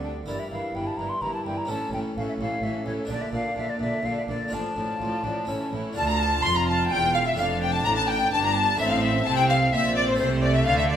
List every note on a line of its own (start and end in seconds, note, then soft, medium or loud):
0.00 0.26 D2 soft
0.00 0.23 D3 soft
0.00 0.26 D3 soft
0.00 0.22 C4 soft
0.00 0.23 G4 soft
0.04 0.12 D4 medium
0.26 0.35 G1 medium
0.26 0.35 G2 soft
0.26 0.50 G2 soft
0.26 0.50 E3 soft
0.26 1.64 E4 soft
0.26 0.50 E4 soft
0.26 1.65 A#4 soft
0.26 0.49 A#4 soft
0.26 0.41 D5 medium
0.39 0.51 E5 medium
0.51 0.59 G1 soft
0.51 0.59 G2 medium
0.51 0.73 G2 soft
0.51 0.73 E3 soft
0.51 0.74 E4 soft
0.51 0.73 A#4 soft
0.51 0.77 F5 medium
0.74 0.83 G1 soft
0.74 0.82 G2 soft
0.74 0.96 G2 soft
0.74 0.96 E3 soft
0.74 0.98 E4 soft
0.74 0.97 A#4 soft
0.74 0.88 G5 medium
0.87 0.99 A5 medium
0.97 1.07 G1 soft
0.97 1.06 G2 soft
0.97 1.20 G2 soft
0.97 1.19 E3 soft
0.97 1.22 E4 soft
0.97 1.20 A#4 soft
0.97 1.11 A#5 medium
1.09 1.23 C6 medium
1.21 1.30 G1 soft
1.21 1.30 G2 medium
1.21 1.43 G2 soft
1.21 1.44 E3 soft
1.21 1.45 E4 soft
1.21 1.43 A#4 soft
1.21 1.33 A#5 medium
1.34 1.45 A5 medium
1.45 1.53 G1 soft
1.45 1.53 G2 soft
1.45 1.67 G2 soft
1.45 1.68 E3 soft
1.45 1.69 E4 soft
1.45 1.68 A#4 soft
1.45 1.59 G5 medium
1.58 1.72 A#5 medium
1.65 1.77 A1 medium
1.65 1.77 A2 medium
1.65 3.04 C#4 soft
1.65 3.04 E4 soft
1.65 1.91 A4 soft
1.65 3.05 A4 soft
1.69 1.90 A2 soft
1.69 1.92 E3 medium
1.69 1.92 C#4 soft
1.69 1.93 A5 medium
1.92 2.00 A1 medium
1.92 2.01 A2 medium
1.92 2.14 A2 soft
1.92 2.16 E3 soft
1.92 2.15 C#4 soft
1.92 2.15 A4 soft
1.92 2.00 G5 medium
2.16 2.24 A1 medium
2.16 2.24 A2 medium
2.16 2.38 A2 soft
2.16 2.39 E3 soft
2.16 2.39 C#4 medium
2.16 2.37 A4 medium
2.16 2.22 F5 medium
2.29 2.34 E5 medium
2.38 2.48 A1 medium
2.38 2.48 A2 medium
2.38 2.61 A2 soft
2.38 2.62 E3 soft
2.38 2.61 C#4 soft
2.38 2.61 A4 soft
2.38 2.65 F5 medium
2.62 2.70 A1 medium
2.62 2.70 A2 medium
2.62 2.84 A2 soft
2.62 2.86 E3 medium
2.62 2.85 C#4 medium
2.62 2.85 A4 soft
2.62 2.86 E5 medium
2.86 2.94 A1 medium
2.86 3.07 A2 soft
2.86 2.94 A2 soft
2.86 3.09 E3 medium
2.86 3.09 C#4 soft
2.86 3.09 A4 medium
2.86 2.93 C#5 medium
3.05 3.16 A#1 medium
3.05 3.17 A#2 medium
3.05 4.46 D4 soft
3.05 3.31 D4 medium
3.05 4.47 D5 soft
3.05 3.32 D5 medium
3.10 3.31 A#2 soft
3.10 3.32 D3 medium
3.10 3.23 D5 medium
3.21 3.33 E5 medium
3.31 3.39 A#1 medium
3.31 3.40 A#2 medium
3.31 3.54 A#2 soft
3.31 3.55 D3 soft
3.31 3.53 D4 soft
3.31 3.56 D5 soft
3.31 3.56 F5 medium
3.55 3.64 A#1 medium
3.55 3.63 A#2 medium
3.55 3.77 A#2 soft
3.55 3.79 D3 soft
3.55 3.78 D4 medium
3.55 3.80 D5 soft
3.55 3.71 E5 medium
3.70 3.80 D5 medium
3.79 3.87 A#1 medium
3.79 4.01 A#2 soft
3.79 3.88 A#2 medium
3.79 4.02 D3 medium
3.79 4.01 D4 soft
3.79 4.04 D5 medium
3.79 4.07 E5 medium
4.02 4.11 A#1 medium
4.02 4.25 A#2 soft
4.02 4.11 A#2 medium
4.02 4.25 D3 soft
4.02 4.26 D4 medium
4.02 4.28 D5 soft
4.02 4.16 F5 medium
4.17 4.22 E5 medium
4.26 4.35 A#1 medium
4.26 4.36 A#2 soft
4.26 4.50 A#2 soft
4.26 4.51 D3 soft
4.26 4.50 D4 soft
4.26 4.52 D5 soft
4.26 4.55 D5 medium
4.48 4.60 A1 medium
4.48 4.76 F3 soft
4.48 5.44 D4 soft
4.48 4.74 D4 soft
4.48 5.44 F4 soft
4.48 5.45 D5 soft
4.52 4.60 A2 soft
4.52 4.74 A2 soft
4.52 4.76 D5 soft
4.52 5.74 A5 medium
4.75 4.84 A1 soft
4.75 4.98 A2 soft
4.75 4.86 A2 medium
4.75 4.99 F3 soft
4.75 4.99 D4 soft
4.75 4.99 D5 soft
4.99 5.08 A1 soft
4.99 5.09 A2 medium
4.99 5.23 A2 soft
4.99 5.22 F3 soft
4.99 5.22 F4 medium
4.99 5.23 D5 soft
5.23 5.32 A1 medium
5.23 5.32 A2 soft
5.23 5.46 A2 soft
5.23 5.47 F3 soft
5.23 5.48 D4 medium
5.23 5.48 D5 soft
5.45 5.56 A1 soft
5.45 5.56 A2 soft
5.45 5.71 E3 soft
5.45 5.93 C#4 soft
5.45 5.72 C#4 medium
5.45 5.94 E4 soft
5.45 5.72 C#5 soft
5.45 5.95 E5 soft
5.50 5.71 A2 soft
5.72 5.80 A1 medium
5.72 5.80 A2 soft
5.72 5.94 A2 soft
5.72 5.96 E3 soft
5.72 5.96 E4 medium
5.72 5.96 C#5 medium
5.93 6.40 D2 medium
5.93 7.32 D4 medium
5.93 7.33 F4 medium
5.93 7.34 F4 medium
5.93 7.34 D5 medium
5.93 6.07 A5 medium
5.93 6.08 A5 medium
5.97 6.40 D2 medium
5.97 6.08 A5 loud
6.09 6.20 A#5 medium
6.09 6.21 A#5 loud
6.09 6.15 A#5 medium
6.19 6.43 A5 medium
6.19 6.29 A5 loud
6.19 6.28 A5 medium
6.43 6.91 F1 medium
6.43 6.91 F2 medium
6.43 6.87 F2 medium
6.43 6.55 C6 loud
6.43 6.58 C6 loud
6.43 6.49 C6 loud
6.55 6.67 A#5 medium
6.55 6.68 A#5 medium
6.68 6.91 A5 medium
6.68 6.93 A5 loud
6.68 6.77 A5 loud
6.90 7.37 E1 medium
6.90 7.37 E2 medium
6.90 7.34 E2 medium
6.90 7.14 G5 loud
6.90 7.17 G5 medium
6.90 7.15 G5 loud
7.13 7.18 F5 medium
7.13 7.27 F5 medium
7.13 7.27 F5 loud
7.26 7.38 E5 medium
7.26 7.39 E5 loud
7.26 7.33 E5 medium
7.34 7.84 F2 medium
7.34 8.73 D4 medium
7.34 8.30 D4 medium
7.34 8.74 A4 medium
7.34 8.75 D5 medium
7.34 7.46 F5 medium
7.39 7.85 F1 medium
7.39 7.82 F2 medium
7.39 7.45 F5 medium
7.39 7.62 F5 loud
7.61 7.73 G5 medium
7.74 7.78 A5 loud
7.74 7.85 A5 medium
7.74 7.86 A5 medium
7.84 8.31 A1 medium
7.84 8.31 A2 medium
7.84 8.28 A2 medium
7.84 7.96 A#5 loud
7.84 7.97 A#5 loud
7.84 7.90 A#5 loud
7.97 8.08 A5 loud
7.97 8.10 A5 medium
8.08 8.31 G5 medium
8.08 8.33 G5 loud
8.08 8.32 G5 loud
8.31 8.79 G1 medium
8.31 8.78 G2 medium
8.31 8.76 G2 medium
8.31 8.78 D4 medium
8.31 8.43 A5 medium
8.31 8.44 A5 loud
8.31 8.44 A5 medium
8.43 8.55 A#5 medium
8.43 8.56 A#5 loud
8.43 8.56 A#5 medium
8.55 8.79 A5 loud
8.55 8.78 A5 loud
8.55 8.79 A5 medium
8.75 9.25 A1 medium
8.75 9.25 A2 medium
8.75 9.24 C4 medium
8.75 10.13 E4 medium
8.75 10.14 A4 medium
8.75 10.15 C5 medium
8.75 8.83 E5 loud
8.80 9.22 A2 medium
8.80 8.91 E5 loud
8.80 8.86 E5 medium
8.90 9.02 F5 loud
8.90 9.03 F5 medium
9.02 9.25 E5 loud
9.02 9.26 E5 medium
9.02 9.29 E5 medium
9.26 9.72 C2 medium
9.26 9.72 C3 medium
9.26 9.69 C3 medium
9.26 9.72 C4 medium
9.26 9.31 A5 loud
9.26 9.37 A5 medium
9.26 9.38 A5 loud
9.38 9.49 G5 medium
9.38 9.42 G5 loud
9.38 9.50 G5 loud
9.49 9.75 F5 medium
9.49 9.72 F5 loud
9.49 9.58 F5 medium
9.72 10.19 A#1 medium
9.72 10.19 A#2 medium
9.72 10.16 A#2 medium
9.72 10.19 C4 medium
9.72 9.80 E5 loud
9.72 9.96 E5 loud
9.97 10.02 D5 loud
9.97 10.08 D5 medium
9.97 10.08 D5 loud
10.07 10.18 C5 medium
10.07 10.17 C5 medium
10.07 10.19 C5 medium
10.15 10.96 E4 medium
10.15 10.96 A4 medium
10.15 10.96 C5 medium
10.15 10.42 C5 loud
10.19 10.67 C2 loud
10.19 10.62 C3 medium
10.19 10.67 C3 medium
10.19 10.96 A3 medium
10.19 10.25 C5 medium
10.19 10.29 C5 medium
10.42 10.54 D5 medium
10.42 10.55 D5 medium
10.42 10.55 D5 loud
10.54 10.66 E5 loud
10.54 10.60 E5 medium
10.54 10.67 E5 medium
10.66 10.96 D2 medium
10.66 10.96 D3 medium
10.66 10.78 F5 loud
10.66 10.78 F5 medium
10.77 10.89 E5 loud
10.77 10.84 E5 medium
10.77 10.84 E5 loud
10.90 10.96 D5 loud
10.90 10.96 D5 medium